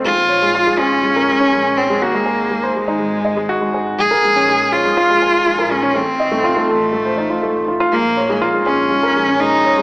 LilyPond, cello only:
\new Staff \with { instrumentName = "Cello" } { \time 4/4 \key bes \minor \tempo 4 = 122 f'4. des'2 c'8 | bes4. aes2 r8 | aes'4. f'2 des'8 | c'4. a2 r8 |
bes4 r8 des'4. ees'4 | }